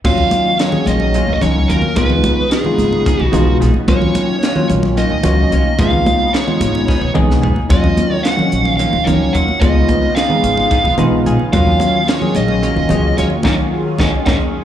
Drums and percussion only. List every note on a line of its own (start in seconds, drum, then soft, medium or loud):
0.05 kick medium
0.05 crash medium
0.05 muted conga medium
0.05 low conga soft
0.18 low conga medium
0.31 closed hi-hat medium
0.31 high conga medium
0.45 low conga soft
0.59 snare loud
0.59 closed hi-hat medium
0.72 low conga medium
0.86 closed hi-hat medium
0.86 high conga medium
0.86 low conga soft
1.00 muted conga medium
1.14 closed hi-hat medium
1.27 high conga medium
1.41 snare soft
1.41 closed hi-hat medium
1.41 low conga medium
1.70 closed hi-hat medium
1.82 high conga medium
1.96 kick loud
1.96 closed hi-hat medium
1.96 muted conga medium
1.96 low conga soft
2.10 low conga medium
2.24 kick medium
2.24 closed hi-hat medium
2.24 high conga loud
2.37 low conga soft
2.51 snare loud
2.51 closed hi-hat medium
2.65 low conga medium
2.79 snare soft
2.79 closed hi-hat medium
2.79 high conga medium
2.79 low conga soft
2.92 muted conga medium
3.06 kick loud
3.06 closed hi-hat medium
3.20 high conga medium
3.33 snare soft
3.33 closed hi-hat medium
3.33 low conga medium
3.62 snare soft
3.62 closed hi-hat medium
3.74 high conga medium
3.88 kick loud
3.88 closed hi-hat medium
3.88 muted conga medium
3.88 low conga soft
4.02 low conga medium
4.15 closed hi-hat medium
4.15 high conga loud
4.29 low conga soft
4.43 snare loud
4.43 closed hi-hat medium
4.56 low conga medium
4.70 closed hi-hat medium
4.70 high conga medium
4.70 low conga soft
4.83 muted conga medium
4.97 closed hi-hat medium
5.10 high conga medium
5.23 closed hi-hat medium
5.23 low conga medium
5.52 closed hi-hat medium
5.65 high conga medium
5.79 kick loud
5.79 closed hi-hat medium
5.79 muted conga medium
5.93 low conga medium
6.06 kick medium
6.06 closed hi-hat soft
6.06 high conga loud
6.06 low conga soft
6.34 snare loud
6.34 closed hi-hat medium
6.48 low conga medium
6.61 closed hi-hat medium
6.61 high conga medium
6.75 muted conga medium
6.75 low conga soft
6.88 kick medium
6.88 snare medium
6.88 low conga soft
7.02 high conga medium
7.02 low conga soft
7.15 kick medium
7.15 low conga medium
7.31 snare medium
7.43 floor tom medium
7.56 high conga medium
7.70 kick loud
7.70 closed hi-hat medium
7.70 muted conga loud
7.70 low conga soft
7.84 low conga medium
7.97 closed hi-hat medium
7.97 high conga loud
8.12 low conga soft
8.25 snare loud
8.25 closed hi-hat medium
8.39 low conga medium
8.52 closed hi-hat medium
8.52 low conga soft
8.65 muted conga medium
8.79 closed hi-hat medium
8.93 high conga medium
9.07 closed hi-hat medium
9.07 low conga medium
9.35 closed hi-hat medium
9.48 high conga medium
9.61 kick loud
9.61 closed hi-hat medium
9.61 muted conga medium
9.61 low conga soft
9.89 kick medium
9.89 closed hi-hat soft
9.89 high conga loud
10.02 low conga soft
10.17 snare loud
10.17 closed hi-hat medium
10.30 low conga medium
10.44 closed hi-hat medium
10.44 high conga medium
10.44 low conga soft
10.57 muted conga medium
10.71 kick medium
10.71 snare soft
10.71 closed hi-hat medium
10.85 high conga medium
10.98 closed hi-hat soft
10.98 low conga medium
11.26 closed hi-hat medium
11.39 high conga medium
11.53 kick loud
11.53 closed hi-hat medium
11.53 muted conga medium
11.53 low conga soft
11.67 low conga medium
11.80 closed hi-hat medium
11.80 high conga loud
11.94 low conga soft
12.08 snare loud
12.08 closed hi-hat medium
12.22 low conga medium
12.35 closed hi-hat medium
12.35 high conga medium
12.35 low conga soft
12.48 muted conga medium
12.63 closed hi-hat medium
12.76 high conga medium
12.89 closed hi-hat medium
12.89 low conga medium
13.18 snare soft
13.18 closed hi-hat medium
13.30 high conga medium
13.43 kick medium
13.43 snare medium
13.43 muted conga medium
13.99 kick medium
13.99 snare loud
13.99 muted conga medium
14.26 kick medium
14.26 snare medium
14.26 muted conga medium